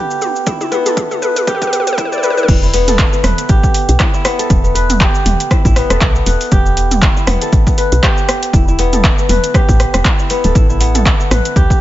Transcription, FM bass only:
2.49 E1
3.24 E1
3.49 A1
3.89 B1
4.50 E1
5.26 E1
5.65 A1
5.90 E1
6.01 B1
6.26 E1
6.52 E1
7.27 E1
7.53 A1
7.92 B1
8.54 E1
9.29 E1
9.69 A1
9.94 E1
10.45 D1
10.55 A1
11.31 A1
11.56 D2

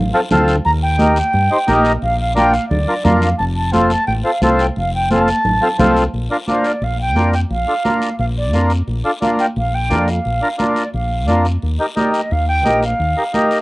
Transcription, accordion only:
0.14 C4 F4 A4
0.31 C4 F4 A4
0.99 D#4 G4 A#4
1.51 D#4 G4 C5
1.67 D#4 G4 A#4
2.35 D4 F4 A#4
2.88 D4 F4 A#4
3.04 D4 F4 A#4
3.73 C4 F4 A4
4.24 C4 F4 A4
4.42 C4 F4 A4
5.11 C4 F4 A4
5.62 C4 F4 A4
5.79 C4 F4 A4
6.31 D4 F4 A#4
6.48 D4 F4 A#4
7.16 D4 F4 A#4
7.68 D4 F4 A4
7.85 D4 F4 A#4
8.54 D4 F4 A#4
9.05 D4 F4 A4
9.22 D4 F4 A#4
9.90 D4 F4 A#4
10.42 D4 F4 A#4
10.58 D4 F4 A#4
11.27 D4 F4 A#4
11.80 D#4 G4 A#4
11.96 D#4 G4 A#4
12.65 D#4 G4 A#4
13.17 D#4 G4 A#4
13.34 D#4 G4 A#4

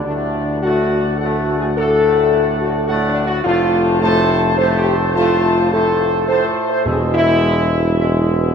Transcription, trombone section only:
0.07 A2 A3
0.64 A2 A3
1.22 A2 A3
1.78 A2 A3
2.88 A2 A3
3.44 A2 A3
4.02 A2 A3
4.57 A2 A3
5.16 A2 A3
5.72 A2 A3
6.28 A2 A3
6.85 B2 G#3
8.00 B2 G#3

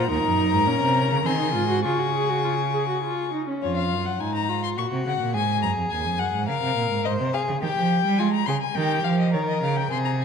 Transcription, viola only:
0.10 D#4
0.67 C#4
1.25 C4
1.39 D#4
1.54 F4
1.69 F#4
1.85 F4
1.99 F#4
2.14 G#4
2.29 F#4
2.44 F4
2.74 G#4
2.89 F#4
3.04 F4
3.34 D#4
3.48 C#4

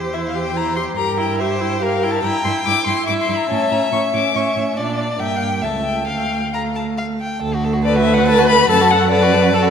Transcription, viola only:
Already playing: G4
0.14 E4
0.35 G4
0.56 E4
0.76 G4
0.97 G4
1.18 E4
1.40 G4
1.61 E4
1.82 G4
2.03 E4
2.24 E4
2.45 E4
2.65 E4
2.87 E4
3.08 E4
3.29 E4
3.50 C#4
3.72 C#4
3.92 C#4
4.14 C#4
4.35 C#4
4.56 C#4
4.76 D4
5.19 A#3
5.62 A3
6.08 A3
6.53 A3
7.85 B4
8.69 A4
9.12 B4
9.53 A4

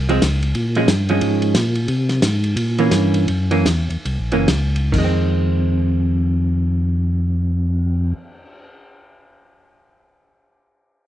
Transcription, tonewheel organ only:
Already playing: C2
0.22 C#2
0.55 A#2
0.88 G2
1.22 G#2
1.55 A#2
1.88 C3
2.23 G#2
2.56 A#2
2.91 G2
3.29 F#2
3.66 E2
3.90 E2
4.05 C2
4.20 A#1
4.34 F#1
4.48 C#2
4.93 F2

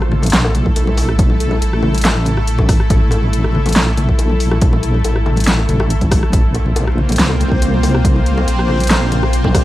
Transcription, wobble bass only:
Already playing: A1
0.33 A#1
1.62 A1
2.90 A1
3.76 A#1
5.05 A1
5.69 A1
6.33 A#1
7.19 C2
8.47 A#1

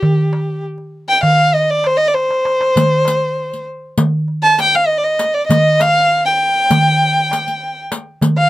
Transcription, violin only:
Already playing: G4
1.09 G5
1.23 F5
1.54 D#5
1.70 D5
1.86 C5
1.97 D#5
2.08 D5
2.13 C5
4.43 A5
4.62 G5
4.75 F5
4.86 D#5
4.98 D5
5.04 D#5
5.34 D5
5.47 D#5
5.81 F5
6.25 G5
8.37 F5

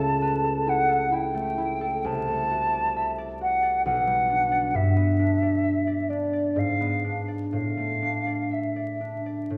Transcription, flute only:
Already playing: A5
0.69 F#5
1.13 G5
2.06 A5
3.42 F#5
3.85 F#5
4.75 E5
6.09 D5
6.58 F5
7.53 F5
8.53 E5

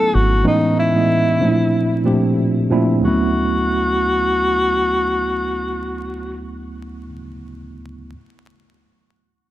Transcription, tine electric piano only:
Already playing: F#3 A3 B3 C#4 D#4 E4
0.44 A2 E3 G#3 B3 C#4 D#4
0.94 A2 E3 G#3 B3 C#4 D#5
1.41 A#2 F3 A3 C4 D4 D#4
1.49 E4
2.05 A#2 F3 A3 C4 D4 G4
2.70 A#2 F3 A3 C4 D4 E4
3.00 D2 F#3 A3 B3
3.06 C#4 E4

